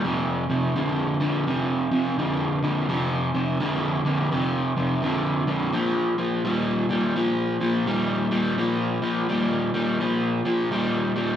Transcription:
X:1
M:4/4
L:1/8
Q:"Swing" 1/4=84
K:Bb
V:1 name="Overdriven electric guitar" clef=bass
[F,,C,] [F,,C,] [F,,D,] [F,,D,] [F,,C,] [F,,C,] [F,,D,] [F,,D,] | [F,,C,] [F,,C,] [F,,D,] [F,,D,] [F,,C,] [F,,C,] [F,,D,] [F,,D,] | [B,,F,] [B,,F,] [B,,G,] [B,,G,] [B,,F,] [B,,F,] [B,,G,] [B,,G,] | [B,,F,] [B,,F,] [B,,G,] [B,,G,] [B,,F,] [B,,F,] [B,,G,] [B,,G,] |]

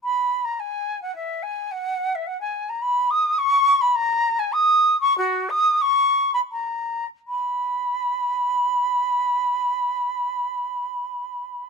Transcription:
X:1
M:3/4
L:1/16
Q:1/4=92
K:B
V:1 name="Flute"
b3 a g3 f e2 g2 | f3 e f g2 a b2 d'2 | c'3 b a3 g d'3 c' | F2 d'2 c'3 b a4 |
b12- | b12 |]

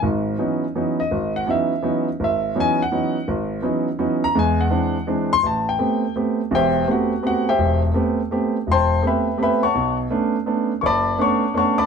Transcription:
X:1
M:3/4
L:1/8
Q:"Swing" 1/4=167
K:C#m
V:1 name="Grand piano"
z4 z d- | d f e3 z | e2 g f3 | z4 z ^a |
g f3 z =c' | [K:Ador] a g3 z2 | [Gceg]2 [Ff]2 [Ff] [Gceg]- | [Gceg] z4 z |
[cgac']2 [Begb]2 [Begb] [^cfa^c']- | [^cfa^c'] z4 z | [dab^c'd']2 [^cfac']2 [cfac'] [dabd'] |]
V:2 name="Grand piano"
[G,,,G,,]2 [E,F,B,CD] z [E,F,B,CD] z | G,,,2 [E,F,B,CD] z [E,F,B,CD] z | G,,,2 [E,F,B,CD] z [E,F,B,CD] z | G,,,2 [E,F,B,CD] z [E,F,B,CD] z |
[E,,G,]2 [E,G,=C=D] z [E,G,CD] z | [K:Ador] A,,,2 [A,B,CG] z [A,B,CG] z | [E,,,E,,]2 [A,B,CG] z [A,B,CG] z | E,,,2 [A,B,CG] z [A,B,CG] z |
E,,,2 [A,B,CG] z [A,B,CG] z | [B,,,B,,]2 [A,B,^CD] z [A,B,CD] z | F,,,2 [A,B,^CD] z [A,B,CD] z |]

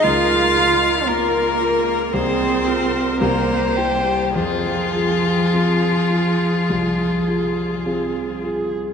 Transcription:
X:1
M:4/4
L:1/8
Q:1/4=52
K:Fm
V:1 name="Viola"
B2 B2 A B c2 | A8 |]
V:2 name="Violin"
f2 B2 c2 B G | F6- F z |]
V:3 name="Grand piano"
D,, [FB] [B,FB] [FB] C,, [FA] C,, [=EG] | F,, [FA] [CFA] [FA] C,, [FA] [CFA] [FA] |]
V:4 name="Cello"
F2 B,2 C2 B, G, | F,6- F, z |]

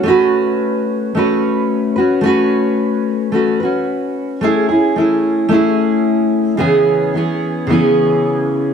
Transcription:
X:1
M:4/4
L:1/8
Q:"Swing 16ths" 1/4=110
K:A
V:1 name="Steel-string acoustic guitar"
[A,CFB]4 [A,CFB]3 [CFB] | [A,CFB]4 [A,CFB] [CFB]3 | [A,CEG] [CEG] [A,CEG]2 [A,CEG]4 | [C,E,B,CG]2 [E,B,CG]2 [C,E,B,CG]4 |]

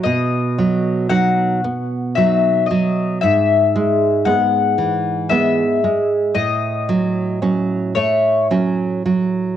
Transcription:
X:1
M:3/4
L:1/8
Q:1/4=57
K:B
V:1 name="Mandolin"
d2 f2 e d | [K:E] e2 f2 e2 | d3 c z2 |]
V:2 name="Nylon-string guitar" clef=bass
B,, F, [F,D] B, [F,D] F, | [K:E] G,, G, [G,B,] E, [G,B,] G, | A,, F, [F,C] A, [F,C] F, |]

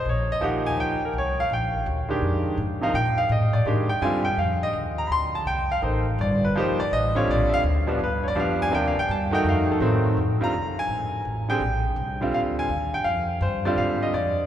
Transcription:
X:1
M:4/4
L:1/8
Q:"Swing" 1/4=166
K:Bbmix
V:1 name="Grand piano"
_d e _g a =g B d f | g2 z4 z f | g f e d z g a g | f e z b [_c'=c'] =a g f |
z2 d _c =c d e _d | d [=ef] z2 =B [_d=d] f a | (3g f g =a g f [_A=A] z2 | z b2 a3 z g- |
g3 z f a2 g | f2 c d f e d2 |]
V:2 name="Grand piano"
z2 [F,B,EG]3 z3 | z3 [E,A,DG]3 z [C,F,B,E] | z4 [E,A,DG] z [D,G,CF] z | z8 |
[B,E=Ac] z3 [F,B,EG] z2 [D,G,CF]- | [D,G,CF]2 z [F,G,_CD] z2 [F,G,=B,D]2 | [C,F,B,D] z2 [E,=A,E_G]3 [E,_G,A,C]2 | z [D,G,CF] z4 z [D,G,CA] |
z3 [D,G,CF]3 z2 | z3 [D,G,CF]3 z2 |]
V:3 name="Upright bass" clef=bass
B,,,2 E,,2 _D,, z C,,2 | B,,,2 D,,2 F,,2 A,, z | B,,2 =A,,2 _A,,2 G,,2 | F,,2 E,,2 D,,2 C,,2 |
=A,,,2 G,,,2 C,,2 A,,,2 | B,,, z D,,2 G,,2 F,,2 | E,, z G,,2 F,,2 =A,,2 | F,, z C,, z A,,,2 =A,,,2 |
B,,,2 C,,2 D,,2 E,,2 | F,,2 G,,2 A,,2 F,,2 |]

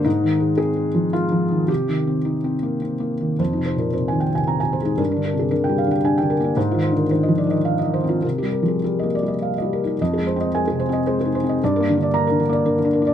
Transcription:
X:1
M:3/4
L:1/16
Q:1/4=111
K:Fdor
V:1 name="Felt piano"
E4 A4 F4 | G8 z4 | c E c B c a g a b a c E | B D B A B g f g a g B D |
c F c B c e d e f e c F | B G B A B e d e f e B G | e A c e a A c e c A c e | d B D, d b B D, d B D, B d |]
V:2 name="Felt piano" clef=bass
(3A,,2 E,2 A,2 (3C2 A,2 F,2 (3A,2 F,2 E,2 | (3C,2 E,2 C2 (3E2 C2 B,2 (3C2 B,2 E,2 | (3F,,2 C,2 B,,2 (3C,2 E,2 C,2 (3C2 C,2 A,2 | (3G,,2 D,2 C,2 (3D,2 G,2 D,2 (3D2 D,2 B,2 |
(3A,,2 E,2 D,2 (3E,2 F,2 E,2 (3E2 E,2 C2 | (3C,2 G,2 F,2 (3G,2 B,2 G,2- (3G,2 G,2 E2 | (3F,,2 A,2 C2 (3A,2 C,2 C2 (3A,2 E2 C2 | (3G,,2 B,2 D,2 (3B,2 D,2 B,2 (3D,2 D2 B,2 |]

